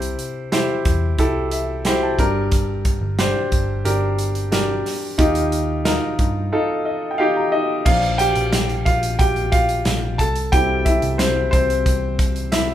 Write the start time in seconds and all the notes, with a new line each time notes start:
Already playing: C2 C3 E4 G4 C5
0.02 closed hi-hat
0.19 closed hi-hat
0.52 E4 G4 C5, snare, closed hi-hat
0.85 E2, kick, closed hi-hat
1.18 C2 E4 G4 A4, kick, closed hi-hat
1.51 E5, closed hi-hat
1.85 E4 G4 C5 G5, snare, closed hi-hat
2.03 A5
2.18 G1 G2 D4 G4 A#4 A#5, kick, closed hi-hat
2.52 kick, closed hi-hat
2.85 kick, closed hi-hat
3.01 G1
3.18 D4 G4 C5, snare, closed hi-hat
3.52 G1, kick, closed hi-hat
3.85 G1 D4 G4 A#4, closed hi-hat
4.19 closed hi-hat
4.35 closed hi-hat
4.52 D4 G4 A#4, snare, closed hi-hat
4.86 snare, open hi-hat
5.18 D#2 D#3 D#4 F4 G4, kick, closed hi-hat
5.35 closed hi-hat
5.52 closed hi-hat
5.85 D#4 F4 A#4, snare, closed hi-hat
6.19 G2, kick, closed hi-hat
6.52 D#4 F4 A4
6.85 D#5
7.11 G5
7.18 D#4 F4 G4 F5 G5
7.36 A#5
7.52 D#4 D#5
7.85 A#1 F3 A#3 D4 F4 F5, kick, crash
8.02 closed hi-hat
8.18 G4 G5, closed hi-hat
8.35 A#1, closed hi-hat
8.53 snare, closed hi-hat
8.69 closed hi-hat
8.85 A#1 F4 F5, kick, closed hi-hat
9.03 closed hi-hat
9.19 A#1 G4 G5, kick, closed hi-hat
9.36 closed hi-hat
9.52 F4 F5, kick, closed hi-hat
9.69 closed hi-hat
9.85 A#1, snare, closed hi-hat
10.18 C2 A4 A5, kick, closed hi-hat
10.36 closed hi-hat
10.52 C2 G3 C4 E4 G4 G5, kick, closed hi-hat
10.85 E4 E5, kick, closed hi-hat
11.02 C2, closed hi-hat
11.18 C4 C5, snare, closed hi-hat
11.51 C2 C4 C5, kick, closed hi-hat
11.70 closed hi-hat
11.86 C2, kick, closed hi-hat
12.19 kick, closed hi-hat
12.36 closed hi-hat
12.52 E4 E5, snare, closed hi-hat